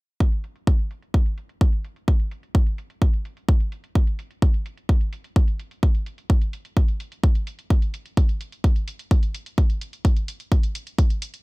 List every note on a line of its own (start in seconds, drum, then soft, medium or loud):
0.20 kick loud
0.32 closed hi-hat soft
0.44 closed hi-hat medium
0.56 closed hi-hat soft
0.67 kick loud
0.67 closed hi-hat medium
0.79 closed hi-hat soft
0.91 closed hi-hat medium
1.02 closed hi-hat soft
1.14 kick loud
1.26 closed hi-hat soft
1.38 closed hi-hat medium
1.49 closed hi-hat soft
1.61 kick loud
1.61 closed hi-hat medium
1.73 closed hi-hat soft
1.85 closed hi-hat medium
1.96 closed hi-hat soft
2.08 kick loud
2.08 closed hi-hat medium
2.20 closed hi-hat soft
2.31 closed hi-hat medium
2.43 closed hi-hat soft
2.55 kick loud
2.55 closed hi-hat medium
2.67 closed hi-hat soft
2.78 closed hi-hat medium
2.90 closed hi-hat soft
3.02 kick loud
3.02 closed hi-hat medium
3.13 closed hi-hat soft
3.25 closed hi-hat medium
3.37 closed hi-hat soft
3.49 kick loud
3.49 closed hi-hat medium
3.60 closed hi-hat soft
3.72 closed hi-hat medium
3.84 closed hi-hat soft
3.95 kick loud
3.95 closed hi-hat medium
4.07 closed hi-hat soft
4.19 closed hi-hat medium
4.31 closed hi-hat soft
4.42 kick loud
4.42 closed hi-hat medium
4.54 closed hi-hat soft
4.66 closed hi-hat medium
4.77 closed hi-hat soft
4.89 kick loud
4.89 closed hi-hat medium
5.01 closed hi-hat soft
5.13 closed hi-hat medium
5.24 closed hi-hat soft
5.36 kick loud
5.36 closed hi-hat medium
5.48 closed hi-hat soft
5.60 closed hi-hat medium
5.71 closed hi-hat soft
5.83 kick loud
5.83 closed hi-hat medium
5.95 closed hi-hat soft
6.06 closed hi-hat medium
6.18 closed hi-hat soft
6.30 kick loud
6.30 closed hi-hat medium
6.42 closed hi-hat soft
6.53 closed hi-hat medium
6.65 closed hi-hat soft
6.77 kick loud
6.77 closed hi-hat medium
6.88 closed hi-hat soft
7.00 closed hi-hat medium
7.12 closed hi-hat soft
7.24 kick loud
7.24 closed hi-hat medium
7.35 closed hi-hat soft
7.47 closed hi-hat medium
7.59 closed hi-hat soft
7.70 kick loud
7.70 closed hi-hat medium
7.82 closed hi-hat soft
7.94 closed hi-hat medium
8.06 closed hi-hat soft
8.17 kick loud
8.17 closed hi-hat medium
8.29 closed hi-hat soft
8.41 closed hi-hat medium
8.52 closed hi-hat soft
8.64 kick loud
8.64 closed hi-hat medium
8.76 closed hi-hat soft
8.88 closed hi-hat medium
8.99 closed hi-hat soft
9.11 kick loud
9.11 closed hi-hat medium
9.23 closed hi-hat soft
9.35 closed hi-hat medium
9.46 closed hi-hat soft
9.58 kick loud
9.58 closed hi-hat medium
9.70 closed hi-hat soft
9.81 closed hi-hat medium
9.93 closed hi-hat soft
10.05 kick loud
10.05 closed hi-hat medium
10.17 closed hi-hat soft
10.28 closed hi-hat medium
10.40 closed hi-hat soft
10.52 kick loud
10.52 closed hi-hat medium
10.63 closed hi-hat soft
10.75 closed hi-hat medium
10.87 closed hi-hat soft
10.99 kick loud
10.99 closed hi-hat medium
11.10 closed hi-hat soft
11.22 closed hi-hat medium
11.34 closed hi-hat soft